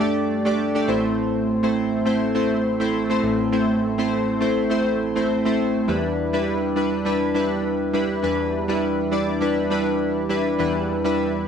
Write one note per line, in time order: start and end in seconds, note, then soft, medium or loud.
0.00 0.85 G2 medium
0.00 0.45 A3 medium
0.00 0.46 D4 medium
0.00 0.46 G4 medium
0.00 0.46 D5 medium
0.45 0.63 A3 medium
0.45 0.63 D4 medium
0.45 0.63 G4 medium
0.45 0.64 D5 medium
0.75 0.86 A3 medium
0.75 0.88 D4 medium
0.75 0.89 G4 medium
0.75 0.89 D5 medium
0.88 3.20 A1 medium
0.88 3.20 A2 medium
0.88 1.47 A3 medium
0.88 1.47 C4 medium
0.88 1.47 E4 medium
0.88 1.48 C5 medium
1.63 1.91 A3 medium
1.63 1.91 C4 medium
1.63 1.91 E4 medium
1.63 1.92 C5 medium
2.05 2.26 A3 medium
2.05 2.26 C4 medium
2.05 2.26 E4 medium
2.05 2.26 C5 medium
2.34 2.63 A3 medium
2.34 2.63 C4 medium
2.34 2.63 E4 medium
2.34 2.64 C5 medium
2.80 2.98 A3 medium
2.80 2.98 C4 medium
2.80 2.98 E4 medium
2.80 2.99 C5 medium
3.09 3.38 A3 medium
3.09 3.38 C4 medium
3.09 3.38 E4 medium
3.09 3.38 C5 medium
3.23 5.55 A1 medium
3.23 5.55 A2 medium
3.52 3.81 A3 medium
3.52 3.81 C4 medium
3.52 3.81 E4 medium
3.52 3.81 C5 medium
3.98 4.26 A3 medium
3.98 4.26 C4 medium
3.98 4.27 E4 medium
3.98 4.27 C5 medium
4.40 4.61 A3 medium
4.40 4.61 C4 medium
4.40 4.61 E4 medium
4.40 4.61 C5 medium
4.70 4.98 A3 medium
4.70 4.99 C4 medium
4.70 4.99 E4 medium
4.70 4.99 C5 medium
5.15 5.34 A3 medium
5.15 5.34 C4 medium
5.15 5.34 E4 medium
5.15 5.34 C5 medium
5.45 5.73 A3 medium
5.45 5.74 C4 medium
5.45 5.74 E4 medium
5.45 5.74 C5 medium
5.88 8.20 E2 medium
5.88 8.20 E3 medium
5.88 6.16 G3 medium
5.88 6.16 D4 medium
5.88 6.17 E4 medium
5.88 6.17 B4 medium
6.33 6.61 G3 medium
6.33 6.62 D4 medium
6.33 6.62 E4 medium
6.33 6.62 B4 medium
6.76 6.96 G3 medium
6.76 6.96 D4 medium
6.76 6.96 E4 medium
6.76 6.97 B4 medium
7.05 7.25 G3 medium
7.05 7.26 D4 medium
7.05 7.26 E4 medium
7.05 7.26 B4 medium
7.35 7.73 G3 medium
7.35 7.73 D4 medium
7.35 7.74 E4 medium
7.35 7.74 B4 medium
7.93 8.14 G3 medium
7.93 8.14 D4 medium
7.93 8.14 E4 medium
7.93 8.14 B4 medium
8.23 10.55 E2 medium
8.23 10.55 E3 medium
8.23 8.51 G3 medium
8.23 8.52 D4 medium
8.23 8.52 E4 medium
8.23 8.52 B4 medium
8.68 8.97 G3 medium
8.68 8.97 D4 medium
8.68 8.97 E4 medium
8.68 8.97 B4 medium
9.11 9.31 G3 medium
9.11 9.32 D4 medium
9.11 9.32 E4 medium
9.11 9.32 D5 medium
9.41 9.61 G3 medium
9.41 9.61 D4 medium
9.41 9.61 E4 medium
9.41 9.61 B4 medium
9.70 10.09 G3 medium
9.70 10.09 D4 medium
9.70 10.09 E4 medium
9.70 10.09 B4 medium
10.29 10.49 G3 medium
10.29 10.49 D4 medium
10.29 10.49 E4 medium
10.29 10.50 B4 medium
10.59 11.48 E2 medium
10.59 11.48 E3 medium
10.59 10.87 G3 medium
10.59 10.87 D4 medium
10.59 10.87 E4 medium
10.59 10.88 B4 medium
11.04 11.32 G3 medium
11.04 11.33 D4 medium
11.04 11.33 E4 medium
11.04 11.33 B4 medium